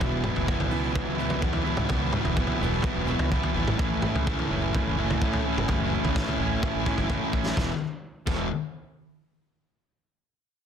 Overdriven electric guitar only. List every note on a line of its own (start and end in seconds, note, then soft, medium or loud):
0.00 0.47 E3 medium
0.00 0.26 F#3 medium
0.00 0.25 B3 medium
0.00 0.24 E4 loud
0.25 0.47 F#3 medium
0.25 0.48 B3 medium
0.25 0.49 E4 medium
0.47 0.71 E3 medium
0.47 0.71 F#3 medium
0.47 0.70 B3 medium
0.47 0.69 E4 medium
0.70 0.92 E3 medium
0.70 0.93 F#3 medium
0.70 0.93 B3 medium
0.70 0.95 E4 medium
0.92 1.17 E3 medium
0.92 1.16 F#3 medium
0.92 1.16 B3 medium
0.92 1.15 E4 medium
1.15 1.40 E3 medium
1.15 1.40 F#3 medium
1.15 1.41 B3 medium
1.15 1.42 E4 medium
1.41 1.89 E3 medium
1.41 1.65 F#3 medium
1.41 1.64 B3 medium
1.41 1.64 E4 medium
1.64 1.89 F#3 medium
1.64 1.89 B3 medium
1.64 1.91 E4 medium
1.89 2.35 E3 medium
1.89 2.13 F#3 loud
1.89 2.12 B3 medium
1.89 2.12 E4 loud
2.12 2.35 F#3 medium
2.12 2.36 B3 medium
2.12 2.38 E4 medium
2.36 2.62 E3 medium
2.36 2.61 F#3 medium
2.36 2.61 B3 medium
2.36 2.60 E4 medium
2.61 2.84 E3 medium
2.61 2.83 F#3 medium
2.61 2.84 B3 medium
2.61 2.86 E4 medium
2.84 3.10 E3 medium
2.84 3.08 F#3 medium
2.84 3.08 B3 medium
2.84 3.07 E4 medium
3.07 3.30 E3 medium
3.07 3.30 F#3 medium
3.07 3.31 B3 medium
3.07 3.33 E4 medium
3.31 3.78 E3 medium
3.31 3.56 F#3 medium
3.31 3.55 B3 medium
3.31 3.55 E4 medium
3.55 3.79 F#3 medium
3.55 3.78 B3 medium
3.55 3.79 E4 medium
3.78 4.52 A2 loud
3.78 4.26 E3 loud
3.78 4.04 A3 medium
3.78 4.03 C#4 medium
3.78 4.02 E4 loud
4.02 4.27 A3 medium
4.02 4.27 C#4 medium
4.02 4.28 E4 medium
4.26 4.51 E3 medium
4.26 4.51 A3 medium
4.26 4.51 C#4 medium
4.26 4.50 E4 medium
4.51 4.99 A2 medium
4.51 4.74 E3 medium
4.51 4.74 A3 medium
4.51 4.75 C#4 medium
4.51 4.76 E4 medium
4.74 4.99 E3 medium
4.74 4.97 A3 medium
4.74 4.97 C#4 medium
4.74 4.97 E4 medium
4.98 5.46 A2 medium
4.98 5.21 E3 medium
4.98 5.22 A3 medium
4.98 5.22 C#4 medium
4.98 5.24 E4 medium
5.22 5.69 E3 medium
5.22 5.47 A3 medium
5.22 5.46 C#4 medium
5.22 5.45 E4 medium
5.45 5.69 A3 medium
5.45 5.69 C#4 medium
5.45 5.70 E4 medium
5.69 6.15 A2 medium
5.69 6.15 E3 medium
5.69 5.93 A3 medium
5.69 5.93 C#4 medium
5.69 5.91 E4 loud
5.93 6.17 A3 medium
5.93 6.17 C#4 medium
5.93 6.18 E4 medium
6.17 6.40 E3 medium
6.17 6.40 A3 medium
6.17 6.39 C#4 medium
6.17 6.38 E4 medium
6.39 6.87 A2 medium
6.39 6.61 E3 medium
6.39 6.61 A3 medium
6.39 6.62 C#4 medium
6.39 6.63 E4 loud
6.62 6.86 E3 medium
6.62 6.86 A3 medium
6.62 6.85 C#4 medium
6.62 6.84 E4 medium
6.86 7.34 A2 medium
6.86 7.08 E3 medium
6.86 7.09 A3 medium
6.86 7.09 C#4 medium
6.86 7.10 E4 medium
7.09 7.55 E3 medium
7.09 7.34 A3 medium
7.09 7.33 C#4 medium
7.09 7.32 E4 medium
7.33 7.56 A3 medium
7.33 7.56 C#4 medium
7.33 7.55 E4 medium
7.56 7.70 E2 medium
7.56 7.70 B2 medium
7.56 7.71 E3 loud
8.27 8.46 E2 medium
8.27 8.46 B2 loud
8.27 8.47 E3 loud